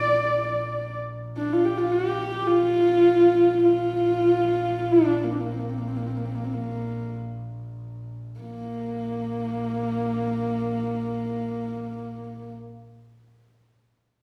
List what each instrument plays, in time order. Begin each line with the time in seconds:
Already playing: double bass A#1, horsehead fiddle D5
1.37 horsehead fiddle D4
1.53 horsehead fiddle F4
1.65 horsehead fiddle G4
1.77 horsehead fiddle F4
1.92 horsehead fiddle G4
2.48 horsehead fiddle F4
2.74 double bass A#1
3.64 horsehead fiddle F4
4.92 horsehead fiddle D4
5.23 horsehead fiddle A#3
5.32 horsehead fiddle C4
5.41 horsehead fiddle A#3
5.51 horsehead fiddle C4
5.60 horsehead fiddle A#3
5.69 horsehead fiddle C4
5.78 horsehead fiddle A#3
5.88 horsehead fiddle C4
5.97 horsehead fiddle A#3
6.06 horsehead fiddle C4
6.17 horsehead fiddle A#3
6.25 horsehead fiddle C4
6.35 horsehead fiddle A#3
6.44 horsehead fiddle C4
6.54 horsehead fiddle A#3
8.39 double bass A#1, horsehead fiddle A#3